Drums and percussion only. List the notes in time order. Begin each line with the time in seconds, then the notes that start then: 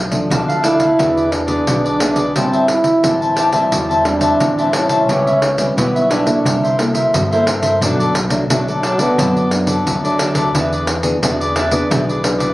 0.12 pandeiro
0.31 pandeiro
0.50 pandeiro
0.64 pandeiro
0.80 pandeiro
0.99 pandeiro
1.17 pandeiro
1.32 pandeiro
1.48 pandeiro
1.67 pandeiro
1.86 pandeiro
2.00 pandeiro
2.16 pandeiro
2.36 pandeiro
2.53 pandeiro
2.68 pandeiro
2.84 pandeiro
3.04 pandeiro
3.22 pandeiro
3.37 pandeiro
3.52 pandeiro
3.72 pandeiro
3.91 pandeiro
4.05 pandeiro
4.21 pandeiro
4.40 pandeiro
4.59 pandeiro
4.73 pandeiro
4.89 pandeiro
5.09 pandeiro
5.27 pandeiro
5.42 pandeiro
5.58 pandeiro
5.78 pandeiro
5.96 pandeiro
6.11 pandeiro
6.27 pandeiro
6.46 pandeiro
6.64 pandeiro
6.79 pandeiro
6.95 pandeiro
7.14 pandeiro
7.32 pandeiro
7.47 pandeiro
7.63 pandeiro
7.82 pandeiro
8.00 pandeiro
8.15 pandeiro
8.30 pandeiro
8.50 pandeiro
8.68 pandeiro
8.83 pandeiro
8.99 pandeiro
9.19 pandeiro
9.37 pandeiro
9.51 pandeiro
9.67 pandeiro
9.87 pandeiro
10.05 pandeiro
10.19 pandeiro
10.35 pandeiro
10.55 pandeiro
10.73 pandeiro
10.87 pandeiro
11.03 pandeiro
11.23 pandeiro
11.41 pandeiro
11.56 pandeiro
11.71 pandeiro
11.91 pandeiro
12.09 pandeiro
12.24 pandeiro
12.40 pandeiro